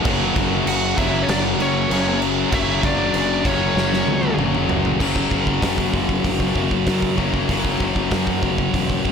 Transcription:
0.04 0.32 F#1 medium
0.04 0.99 F#2 medium
0.04 0.96 C#3 loud
0.04 0.97 F#3 loud
0.04 kick loud
0.04 crash medium
0.36 0.63 F#1 medium
0.36 kick medium
0.36 crash medium
0.66 0.94 F#1 medium
0.66 0.96 F#4 loud
0.66 0.98 F#5 loud
0.66 crash medium
0.97 1.25 F#1 medium
0.97 1.89 F#2 medium
0.97 1.89 C#3 medium
0.97 1.92 F#3 loud
0.97 1.20 E4 medium
0.97 1.23 E5 loud
0.97 kick medium
0.97 crash medium
1.22 1.28 C#4 medium
1.22 1.29 C#5 medium
1.28 1.56 F#1 loud
1.28 1.37 D4 medium
1.28 1.39 D5 medium
1.28 snare loud
1.28 crash loud
1.59 1.86 F#1 medium
1.59 2.18 C#4 medium
1.59 2.19 C#5 medium
1.59 crash medium
1.89 2.44 F#1 loud
1.89 2.51 F#2 medium
1.89 2.51 C#3 medium
1.89 2.53 F#3 medium
1.89 crash medium
2.22 crash medium
2.51 2.79 F#1 medium
2.51 3.43 F#2 medium
2.51 3.43 C#3 loud
2.51 3.43 F#3 loud
2.51 2.81 E4 medium
2.51 2.85 E5 loud
2.51 kick loud
2.51 crash medium
2.83 3.10 F#1 medium
2.83 3.41 D4 medium
2.83 3.46 D5 loud
2.83 kick medium
2.83 crash medium
3.14 3.41 F#1 medium
3.14 crash medium
3.44 3.72 F#1 medium
3.44 4.36 F#2 medium
3.44 4.37 C#3 medium
3.44 4.36 F#3 medium
3.44 4.35 C#4 medium
3.44 4.35 C#5 medium
3.44 kick loud
3.44 crash medium
3.76 4.03 F#1 loud
3.76 snare medium
3.93 snare medium
4.07 4.34 C#2 medium
4.07 high tom medium
4.23 high tom medium
4.37 4.65 F#1 loud
4.37 4.98 F#2 medium
4.37 4.98 C#3 medium
4.37 4.99 F#3 medium
4.37 mid tom medium
4.54 mid tom medium
4.69 4.96 F#1 medium
4.69 floor tom loud
4.85 floor tom medium
4.99 5.28 F#1 medium
4.99 7.15 F#2 medium
4.99 7.16 C#3 medium
4.99 7.17 F#3 medium
4.99 kick medium
4.99 crash loud
5.16 kick medium
5.31 5.59 F#1 medium
5.31 kick medium
5.47 kick medium
5.62 5.90 F#1 medium
5.62 kick medium
5.62 snare loud
5.62 open hi-hat medium
5.78 kick medium
5.93 6.21 F#1 medium
5.93 kick medium
6.09 kick medium
6.24 6.52 F#1 loud
6.24 kick medium
6.24 open hi-hat medium
6.40 kick medium
6.55 6.83 F#1 medium
6.55 6.85 F#2 medium
6.55 6.85 C#3 medium
6.55 6.89 F#3 medium
6.55 kick medium
6.71 kick medium
6.86 7.47 F#2 medium
6.86 7.15 F#2 medium
6.86 7.48 C#3 medium
6.86 7.51 F#3 medium
6.86 kick medium
6.86 snare loud
6.86 open hi-hat medium
7.02 kick medium
7.17 7.46 F#1 medium
7.17 7.47 F#2 medium
7.17 7.48 C#3 medium
7.17 7.51 F#3 medium
7.17 kick medium
7.34 kick medium
7.48 7.77 F#1 medium
7.48 9.12 F#2 medium
7.48 9.12 C#3 medium
7.48 9.12 F#3 medium
7.48 kick medium
7.48 open hi-hat medium
7.65 kick medium
7.80 8.08 F#1 medium
7.80 kick medium
7.96 kick medium
8.11 8.39 F#2 medium
8.11 kick medium
8.11 snare loud
8.11 open hi-hat medium
8.27 kick medium
8.43 8.71 F#1 medium
8.43 kick medium
8.58 kick medium
8.74 9.02 E1 medium
8.74 kick medium
8.74 open hi-hat medium
8.90 kick medium
9.04 9.12 F#1 medium
9.04 9.12 F#2 medium
9.04 9.12 C#3 medium
9.04 9.12 F#3 medium
9.04 kick medium

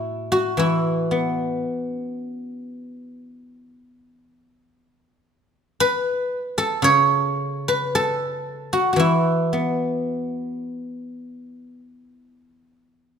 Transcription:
0.00 1.62 A2 medium
0.00 0.59 E4 medium
0.00 0.31 F#4 medium
0.00 0.63 A4 medium
0.00 0.19 B4 medium
0.32 2.75 F#4 medium
0.57 3.72 E3 medium
0.57 1.60 E4 medium
1.11 3.20 B3 soft
1.60 1.77 D#4 medium
1.77 1.95 D4 medium
1.95 3.20 C#4 medium
5.80 7.68 B4 loud
6.58 7.95 A4 medium
6.82 8.97 C#3 medium
6.82 8.75 C#5 loud
7.68 9.73 B4 medium
7.95 10.15 A4 medium
8.73 8.92 F#4 medium
8.93 12.35 E3 medium
8.93 11.36 F#4 medium
8.99 11.60 E4 medium
9.53 11.79 B3 soft

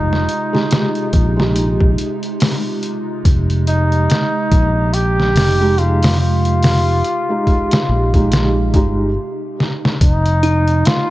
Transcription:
0.00 0.26 F1 medium
0.00 9.12 C3 medium
0.00 9.12 G#3 medium
0.00 1.98 D#4 medium
0.00 9.12 D#4 medium
0.00 3.21 F4 medium
0.13 snare soft
0.29 closed hi-hat medium
0.53 1.32 G#3 medium
0.53 1.33 D#4 medium
0.53 1.33 G4 medium
0.53 snare soft
0.71 snare loud
0.71 closed hi-hat medium
0.95 closed hi-hat soft
1.13 1.95 A#1 medium
1.13 kick medium
1.13 closed hi-hat medium
1.37 5.54 G#3 medium
1.37 5.55 D#4 medium
1.37 snare medium
1.41 5.56 G4 medium
1.56 closed hi-hat medium
1.80 kick medium
1.98 closed hi-hat medium
2.23 closed hi-hat soft
2.40 snare loud
2.40 open hi-hat medium
2.82 closed hi-hat medium
3.25 4.06 F1 medium
3.25 9.13 G4 medium
3.25 kick loud
3.25 closed hi-hat medium
3.50 closed hi-hat soft
3.67 4.95 D#4 loud
3.67 closed hi-hat medium
3.92 closed hi-hat soft
4.10 snare loud
4.10 closed hi-hat medium
4.51 5.33 A#1 loud
4.51 kick loud
4.51 closed hi-hat medium
4.94 5.80 G4 loud
4.94 closed hi-hat medium
5.20 snare soft
5.35 7.01 F1 medium
5.35 snare loud
5.35 open hi-hat medium
5.60 5.75 G#3 medium
5.60 5.76 D#4 medium
5.60 5.77 G4 medium
5.78 6.02 G#3 medium
5.78 6.02 D#4 medium
5.78 6.19 F4 loud
5.78 6.03 G4 medium
5.78 closed hi-hat medium
6.02 snare loud
6.02 open hi-hat medium
6.20 9.12 F4 loud
6.45 closed hi-hat medium
6.63 snare loud
6.63 open hi-hat medium
7.05 closed hi-hat medium
7.29 8.08 G#3 medium
7.29 8.09 D#4 medium
7.29 8.09 G4 medium
7.47 kick medium
7.47 closed hi-hat medium
7.72 snare medium
7.72 closed hi-hat medium
7.89 8.74 A#1 medium
8.14 8.71 G#3 medium
8.14 8.71 D#4 medium
8.14 8.72 G4 medium
8.14 kick medium
8.14 closed hi-hat medium
8.32 snare loud
8.32 closed hi-hat medium
8.74 9.16 G1 medium
8.74 9.08 G#3 medium
8.74 9.09 D#4 medium
8.74 9.09 G4 medium
8.74 kick medium
8.74 closed hi-hat medium
9.60 snare medium
9.85 snare medium
10.00 10.82 F1 medium
10.00 11.10 C3 medium
10.00 11.10 G#3 medium
10.00 11.10 D#4 medium
10.00 10.87 D#4 medium
10.00 11.10 F4 medium
10.00 kick loud
10.00 closed hi-hat loud
10.25 closed hi-hat soft
10.43 11.10 D#4 medium
10.43 closed hi-hat medium
10.68 closed hi-hat soft
10.85 11.10 F4 loud
10.85 snare loud
10.85 closed hi-hat medium

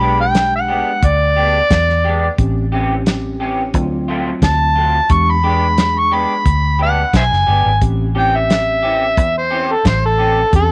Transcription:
0.00 0.81 B1 medium
0.00 1.02 G#3 medium
0.00 0.23 G#3 medium
0.00 0.22 B3 medium
0.00 1.02 D4 medium
0.00 0.22 D4 medium
0.00 0.22 G4 medium
0.00 1.02 G4 medium
0.00 0.19 B5 medium
0.21 0.53 G5 medium
0.35 snare loud
0.35 closed hi-hat medium
0.56 1.08 F#5 medium
0.68 0.91 G#3 medium
0.68 0.90 B3 soft
0.68 0.90 D4 medium
0.68 0.90 G4 medium
1.03 1.60 D2 medium
1.03 2.36 D5 loud
1.03 kick loud
1.03 closed hi-hat medium
1.36 1.59 G#3 medium
1.36 1.58 B3 medium
1.36 1.58 D4 medium
1.36 1.57 G4 medium
1.70 2.28 E2 medium
1.70 kick medium
1.70 snare loud
1.70 closed hi-hat medium
1.89 snare soft
2.04 2.27 G#3 medium
2.04 2.26 B3 medium
2.04 2.26 D4 medium
2.04 2.26 G4 medium
2.38 3.74 A1 medium
2.38 2.64 C4 medium
2.38 2.64 C#4 medium
2.38 2.64 G4 medium
2.38 kick loud
2.38 closed hi-hat medium
2.72 2.95 E3 medium
2.72 3.73 C4 medium
2.72 2.94 C4 medium
2.72 3.74 C#4 medium
2.72 2.94 C#4 medium
2.72 3.74 G4 medium
2.72 2.93 G4 medium
3.06 snare loud
3.06 closed hi-hat medium
3.40 3.63 E3 medium
3.40 3.62 C4 medium
3.40 3.62 C#4 medium
3.40 3.61 G4 medium
3.74 4.32 D2 medium
3.74 4.83 F#3 medium
3.74 4.83 C4 medium
3.74 4.83 F4 loud
3.74 kick loud
3.74 closed hi-hat medium
4.08 4.31 F#3 medium
4.08 4.30 A3 medium
4.08 4.30 C4 medium
4.08 4.29 F4 medium
4.42 4.99 D2 loud
4.42 5.13 A5 loud
4.42 kick medium
4.42 snare loud
4.42 closed hi-hat medium
4.76 4.98 F#3 medium
4.76 4.98 A3 medium
4.76 4.98 C4 medium
4.76 4.97 F4 medium
5.09 6.25 E2 medium
5.09 5.36 G#3 medium
5.09 5.36 D4 medium
5.09 5.36 G4 medium
5.09 5.32 C#6 medium
5.09 kick loud
5.09 closed hi-hat medium
5.31 6.00 B5 medium
5.44 6.46 G#3 medium
5.44 5.66 G#3 medium
5.44 5.66 B3 medium
5.44 6.46 D4 medium
5.44 5.66 D4 medium
5.44 5.65 G4 medium
5.44 6.46 G#4 medium
5.78 snare loud
5.78 closed hi-hat medium
5.99 6.15 C#6 medium
6.11 6.34 G#3 soft
6.11 6.34 B3 soft
6.11 6.33 D4 medium
6.11 6.33 G4 medium
6.11 6.79 B5 medium
6.46 7.03 D2 medium
6.46 kick loud
6.46 closed hi-hat medium
6.79 7.02 G#3 soft
6.79 7.02 B3 medium
6.79 7.01 D4 medium
6.79 7.01 G4 medium
6.79 7.14 F#5 medium
7.13 7.29 B1 medium
7.13 7.24 C5 medium
7.13 7.23 E5 medium
7.13 7.81 G#5 medium
7.13 kick medium
7.13 snare loud
7.13 closed hi-hat medium
7.32 7.46 F#1 medium
7.32 snare soft
7.47 7.64 G1 medium
7.47 7.70 G#3 medium
7.47 7.69 B3 medium
7.47 7.69 D4 medium
7.47 7.69 G4 medium
7.66 7.80 G#1 medium
7.81 9.17 A1 medium
7.81 8.08 C4 medium
7.81 8.08 C#4 medium
7.81 8.08 G4 medium
7.81 kick medium
7.81 closed hi-hat soft
8.15 8.38 E3 medium
8.15 9.17 C4 medium
8.15 8.37 C4 medium
8.15 9.17 C#4 medium
8.15 8.37 C#4 medium
8.15 8.37 G4 medium
8.15 9.17 G4 medium
8.15 8.38 G5 medium
8.36 9.34 E5 medium
8.50 snare loud
8.50 closed hi-hat medium
8.83 9.06 E3 soft
8.83 9.05 C4 soft
8.83 9.05 C#4 medium
8.83 9.04 G4 medium
9.17 9.75 E2 medium
9.17 kick loud
9.17 closed hi-hat medium
9.38 9.73 C5 medium
9.51 9.74 E3 medium
9.51 9.73 C4 medium
9.51 9.73 C#4 medium
9.51 9.72 G4 medium
9.72 9.86 A4 medium
9.85 10.43 A1 medium
9.85 10.03 C5 medium
9.85 kick medium
9.85 snare loud
9.85 closed hi-hat medium
10.06 10.53 A4 medium
10.18 10.41 E3 soft
10.18 10.41 C4 medium
10.18 10.41 C#4 medium
10.18 10.40 G4 medium
10.53 10.72 E2 medium
10.53 10.72 C4 medium
10.53 10.72 C#4 medium
10.53 10.72 G4 medium
10.53 10.72 A4 medium
10.53 kick loud
10.53 closed hi-hat medium

